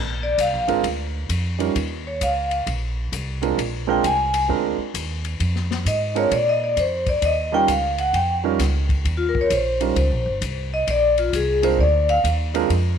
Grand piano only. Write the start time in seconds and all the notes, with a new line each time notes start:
0.68 G#3 C4 D4 F4 A#4
1.59 G3 C#4 D#4 F4 A#4
3.42 G#3 C4 D4 F4 A#4
3.87 G#3 C4 D4 F4 A#4
4.48 G#3 C4 D4 F4 A#4
6.15 G#3 C4 D4 F4 A#4
7.52 G3 C#4 D#4 F4 A#4
8.44 G3 C#4 D#4 F4 A#4
9.80 G3 C#4 D#4 F4 A#4
11.62 G#3 C4 D4 F4 A#4
12.54 G#3 C4 D4 F4 A#4